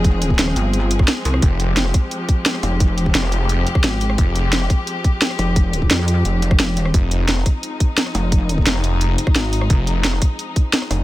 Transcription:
0.00 0.38 F1 loud
0.00 11.04 F3 medium
0.00 11.04 G#3 medium
0.00 11.04 C4 medium
0.00 1.40 G#4 medium
0.04 kick loud
0.04 closed hi-hat medium
0.22 closed hi-hat loud
0.30 kick medium
0.39 0.55 D#1 medium
0.39 snare loud
0.39 closed hi-hat medium
0.48 cross-stick soft
0.56 1.07 G1 loud
0.56 closed hi-hat loud
0.73 closed hi-hat medium
0.91 closed hi-hat loud
0.99 kick loud
0.99 cross-stick soft
1.08 snare loud
1.08 closed hi-hat medium
1.25 1.41 C2 loud
1.25 open hi-hat medium
1.34 cross-stick medium
1.42 1.93 F1 loud
1.42 6.92 G4 loud
1.42 kick loud
1.42 closed hi-hat medium
1.60 closed hi-hat medium
1.77 snare loud
1.77 closed hi-hat medium
1.85 cross-stick soft
1.94 kick loud
1.94 cross-stick soft
1.94 closed hi-hat loud
2.11 closed hi-hat medium
2.29 kick loud
2.29 closed hi-hat medium
2.46 snare loud
2.46 closed hi-hat medium
2.55 cross-stick soft
2.63 3.13 F1 loud
2.63 cross-stick soft
2.63 open hi-hat medium
2.80 kick loud
2.80 closed hi-hat medium
2.98 closed hi-hat medium
3.06 kick medium
3.15 3.65 F1 loud
3.15 snare loud
3.15 closed hi-hat medium
3.23 cross-stick soft
3.32 closed hi-hat medium
3.49 closed hi-hat medium
3.67 closed hi-hat medium
3.75 kick loud
3.75 cross-stick soft
3.84 4.17 G#1 loud
3.84 snare loud
3.84 closed hi-hat medium
4.01 open hi-hat medium
4.10 cross-stick medium
4.18 4.69 F1 loud
4.18 kick loud
4.18 closed hi-hat medium
4.35 closed hi-hat medium
4.53 snare loud
4.53 closed hi-hat medium
4.61 cross-stick soft
4.70 kick loud
4.70 cross-stick soft
4.70 closed hi-hat loud
4.87 closed hi-hat medium
5.04 kick loud
5.04 closed hi-hat medium
5.22 snare loud
5.22 closed hi-hat medium
5.30 cross-stick soft
5.39 5.89 F1 loud
5.39 cross-stick soft
5.39 open hi-hat medium
5.56 kick loud
5.56 closed hi-hat medium
5.73 closed hi-hat medium
5.82 kick medium
5.91 6.24 F2 loud
5.91 snare loud
5.91 closed hi-hat medium
5.99 cross-stick soft
6.08 closed hi-hat medium
6.25 6.73 F1 loud
6.25 closed hi-hat medium
6.42 closed hi-hat medium
6.51 kick loud
6.51 cross-stick soft
6.60 snare loud
6.60 closed hi-hat medium
6.73 6.93 E1 loud
6.73 open hi-hat medium
6.85 cross-stick medium
6.94 7.44 F1 loud
6.94 11.04 D#4 loud
6.94 kick loud
6.94 closed hi-hat medium
7.11 closed hi-hat medium
7.29 snare loud
7.29 closed hi-hat medium
7.37 cross-stick soft
7.46 kick loud
7.46 cross-stick soft
7.46 closed hi-hat medium
7.63 closed hi-hat medium
7.80 kick loud
7.80 closed hi-hat medium
7.98 snare loud
7.98 closed hi-hat medium
8.06 cross-stick soft
8.15 8.65 F1 loud
8.15 cross-stick soft
8.15 open hi-hat medium
8.32 kick loud
8.32 closed hi-hat medium
8.49 closed hi-hat medium
8.58 kick medium
8.66 9.17 F1 loud
8.66 snare loud
8.66 closed hi-hat medium
8.75 cross-stick soft
8.84 closed hi-hat loud
9.01 closed hi-hat medium
9.18 closed hi-hat medium
9.27 kick loud
9.27 cross-stick soft
9.36 9.69 G#1 loud
9.36 snare loud
9.36 closed hi-hat medium
9.53 open hi-hat medium
9.61 cross-stick medium
9.70 10.20 F1 loud
9.70 kick loud
9.70 closed hi-hat medium
9.87 closed hi-hat loud
10.04 snare loud
10.04 closed hi-hat medium
10.13 cross-stick soft
10.22 kick loud
10.22 cross-stick soft
10.22 closed hi-hat loud
10.39 closed hi-hat medium
10.56 kick loud
10.56 closed hi-hat medium
10.73 snare loud
10.73 closed hi-hat medium
10.82 cross-stick soft
10.91 11.04 F1 loud
10.91 cross-stick soft
10.91 open hi-hat medium

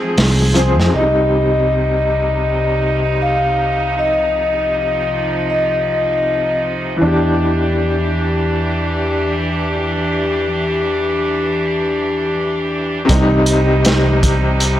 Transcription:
0.00 0.49 F3 medium
0.00 0.89 F3 medium
0.00 0.52 C4 medium
0.00 0.89 C4 medium
0.00 0.54 G#4 loud
0.00 0.89 G#4 medium
0.17 0.79 C2 medium
0.17 snare loud
0.17 open hi-hat medium
0.54 0.68 F3 medium
0.54 0.69 C4 medium
0.54 closed hi-hat medium
0.59 0.70 G#4 medium
0.79 0.92 F2 loud
0.79 snare soft
0.89 6.95 C3 medium
0.94 6.98 C2 medium
0.94 6.97 C3 medium
0.94 6.97 G3 medium
0.94 3.94 G3 medium
0.94 6.97 D#4 medium
0.94 3.29 D#5 medium
0.99 7.00 D#4 medium
3.22 4.00 F5 medium
3.97 6.98 F3 medium
3.97 5.49 D#5 medium
5.50 6.59 D#5 medium
6.97 13.03 E3 medium
7.01 13.06 E2 medium
7.01 13.05 E3 medium
7.01 13.05 D4 medium
7.01 13.05 G4 medium
7.07 13.08 G4 medium
13.05 14.80 C3 loud
13.05 14.80 C3 medium
13.05 14.80 G3 medium
13.05 14.80 D#4 medium
13.09 14.80 C2 medium
13.09 14.80 G3 medium
13.09 kick loud
13.09 closed hi-hat medium
13.15 14.80 D#4 loud
13.46 closed hi-hat medium
13.85 snare loud
13.85 closed hi-hat medium
14.23 kick medium
14.23 closed hi-hat medium
14.60 closed hi-hat medium

